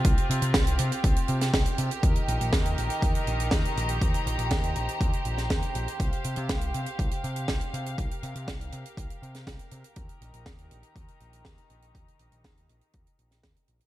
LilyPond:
<<
  \new Staff \with { instrumentName = "String section" } { \time 4/4 \key ees \mixolydian \tempo 4 = 121 << { <c' g'>1 | <ees ees' bes''>1~ | <ees ees' bes''>1 | f''1~ |
f''1 | <ees ees' g' bes''>1~ | <ees ees' g' bes''>1 | } \\ { f'1 | bes'1 | c''1~ | c''1 |
bes'1~ | bes'1~ | bes'1 | } >> }
  \new Staff \with { instrumentName = "Picked electric bass" } { \clef bass \time 4/4 \key ees \mixolydian c,16 r16 c16 c16 c,8 c16 r16 c,16 r16 c8 c,16 r16 c16 r16 | ees,16 r16 bes,,16 bes,,16 ees,8 bes,,16 r16 ees,16 r16 bes,,8 ees,16 r16 bes,,8 | ees,16 r16 bes,,16 bes,,16 ees,8 bes,,16 r16 ees,16 r16 bes,,8 ees,16 r16 bes,,16 r16 | c,16 r16 c16 c16 c,8 c16 r16 c,16 r16 c8 c,16 r16 c8 |
c,16 r16 c16 c16 c,8 c16 r16 c,16 r16 c8 c,16 r16 c16 r16 | ees,16 r16 bes,,16 bes,,16 r8 bes,,16 r16 ees,16 r16 bes,,8 ees,16 r16 bes,,8 | ees,16 r16 bes,,16 bes,,16 ees,8 bes,,16 r16 ees,16 r16 bes,,8 ees,16 r16 bes,,16 r16 | }
  \new DrumStaff \with { instrumentName = "Drums" } \drummode { \time 4/4 <hh bd>16 hh16 hh16 hh16 <hh bd sn>16 hh16 hh16 hh16 <hh bd>16 hh16 hh16 <hh sn>16 <hh bd sn>16 hh16 hh16 hh16 | <hh bd>16 hh16 hh16 hh16 <hh bd sn>16 hh16 hh16 hh16 <hh bd>16 hh16 hh16 hh16 <hh bd sn>16 hh16 hh16 hh16 | <hh bd>16 hh16 hh16 hh16 <hh bd sn>16 hh16 hh16 hh16 <hh bd>16 hh16 hh16 <hh sn>16 <hh bd sn>16 hh16 hh16 hh16 | <hh bd>16 hh16 hh16 hh16 <hh bd sn>16 hh16 hh16 hh16 <hh bd>16 hh16 hh16 hh16 <hh bd sn>16 hh16 hh16 hh16 |
<hh bd>16 hh16 hh16 hh16 <hh bd sn>16 hh16 hh16 hh16 <hh bd>16 hh16 hh16 <hh sn>16 <hh bd sn>16 hh16 hh16 hh16 | <hh bd>16 hh16 hh16 hh16 <hh bd sn>16 hh16 hh16 hh16 <hh bd>16 hh16 hh16 hh16 <hh bd sn>16 hh16 hh16 hh16 | <hh bd>16 hh16 hh16 hh16 <hh bd sn>16 hh16 hh16 hh16 <hh bd>16 hh16 hh16 <hh sn>16 <hh bd sn>16 hh16 hh16 hh16 | }
>>